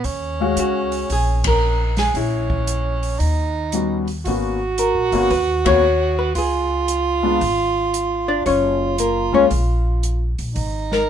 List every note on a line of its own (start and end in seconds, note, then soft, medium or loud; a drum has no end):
0.04 0.53 D#2 medium
0.04 1.96 C#4 medium
0.04 kick soft
0.04 open hi-hat soft
0.40 1.06 G#3 medium
0.40 1.07 C#4 medium
0.40 1.07 F#4 medium
0.40 1.07 F5 medium
0.56 1.05 C#2 medium
0.56 1.07 F#4 medium
0.56 closed hi-hat soft
0.92 open hi-hat soft
1.10 2.11 A#1 medium
1.10 1.45 G#4 medium
1.10 kick soft
1.10 open hi-hat soft
1.44 1.95 A#4 medium
1.44 kick medium
1.44 ride medium
1.97 2.15 G#4 medium
1.97 snare soft
1.97 open hi-hat soft
2.14 3.16 A#1 medium
2.14 3.21 C#4 medium
2.14 2.99 E4 soft
2.14 kick soft
2.14 open hi-hat soft
2.50 kick medium
2.67 closed hi-hat soft
3.03 open hi-hat soft
3.19 4.21 D#2 medium
3.19 4.07 D#4 medium
3.19 kick soft
3.19 open hi-hat soft
3.72 4.04 G3 medium
3.72 4.04 B3 soft
3.72 4.05 C#4 soft
3.72 4.05 F#4 medium
3.72 closed hi-hat soft
4.08 open hi-hat soft
4.25 4.92 G#1 medium
4.25 4.57 A#3 medium
4.25 4.58 B3 soft
4.25 4.58 C#4 soft
4.25 6.31 F#4 loud
4.25 4.58 F#4 medium
4.25 kick soft
4.25 open hi-hat soft
4.78 5.28 A#4 medium
4.78 closed hi-hat soft
4.95 5.11 A#1 medium
5.12 5.29 G1 medium
5.12 5.29 A#3 medium
5.12 5.29 B3 medium
5.12 5.29 C#4 medium
5.12 5.29 F#4 medium
5.12 open hi-hat soft
5.30 6.32 D#2 medium
5.30 5.64 B4 medium
5.30 kick soft
5.30 open hi-hat soft
5.65 5.81 A#3 medium
5.65 5.81 B3 medium
5.65 5.82 C#4 medium
5.65 5.82 F#4 medium
5.65 6.15 C#5 medium
5.65 kick medium
5.65 ride medium
6.19 6.35 B4 medium
6.35 7.37 C#2 medium
6.35 8.42 F4 loud
6.35 7.20 G#4 medium
6.35 kick soft
6.35 open hi-hat soft
6.88 closed hi-hat soft
7.23 7.39 G#3 medium
7.23 7.39 B3 medium
7.23 7.39 D4 medium
7.23 7.40 F4 medium
7.41 8.42 G#1 medium
7.41 kick soft
7.41 open hi-hat soft
7.94 closed hi-hat soft
8.28 8.45 D4 medium
8.28 8.45 D5 medium
8.46 9.29 F#1 medium
8.46 8.95 C#4 medium
8.46 10.33 F4 medium
8.46 8.95 C#5 medium
8.46 kick soft
8.46 open hi-hat soft
8.98 9.33 A#3 soft
8.98 9.33 A#4 soft
8.98 closed hi-hat soft
9.32 9.49 C#2 medium
9.32 9.49 G#3 medium
9.32 9.49 A#3 medium
9.32 9.49 C#4 medium
9.32 9.44 C#4 medium
9.32 9.49 F4 medium
9.32 9.44 C#5 medium
9.51 10.34 A#1 medium
9.51 kick soft
9.51 open hi-hat soft
10.03 closed hi-hat soft
10.39 10.55 A#1 medium
10.39 open hi-hat soft
10.54 11.10 G#1 medium
10.54 11.10 D#4 loud
10.54 kick soft
10.54 open hi-hat soft
10.92 11.09 A#4 medium
10.92 snare soft